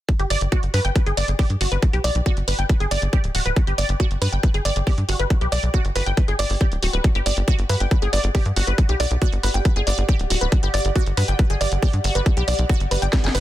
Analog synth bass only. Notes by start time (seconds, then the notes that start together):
0.19 G1
0.30 G1
0.41 G1
0.63 G1
0.74 G2
0.85 G1
1.06 G1
1.17 G1
1.28 G1
1.50 G2
1.61 G1
1.72 G1
1.93 B1
2.04 B1
2.15 B1
2.37 G1
2.48 G1
2.59 G1
2.80 G1
2.91 G1
3.02 G1
3.24 D1
3.35 D1
3.46 D1
3.67 G1
3.78 G1
3.89 G1
4.11 G1
4.22 G2
4.33 G1
4.54 G1
4.65 G1
4.76 G1
4.98 G2
5.09 G1
5.19 G1
5.41 B1
5.52 B1
5.63 B1
5.85 G1
5.96 G1
6.06 G1
6.28 G1
6.39 G1
6.50 G1
6.72 D1
6.83 D1
6.93 D1
7.15 G1
7.26 G1
7.37 G1
7.59 G1
7.69 G2
7.80 G1
8.02 G1
8.13 G1
8.24 G1
8.46 G2
8.56 G1
8.67 G1
8.89 B1
9.00 B1
9.11 B1
9.33 G1
9.43 G1
9.54 G1
9.76 G1
9.87 G1
9.98 G1
10.20 D1
10.30 D1
10.41 D1
10.63 G1
10.74 G1
10.85 G1
11.06 G1
11.17 G2
11.28 G1
11.50 G1
11.61 G1
11.72 G1
11.93 G2
12.04 G1
12.15 G1
12.37 B1
12.48 B1
12.59 B1
12.80 G1
12.91 G1
13.02 G1
13.24 G1
13.35 G1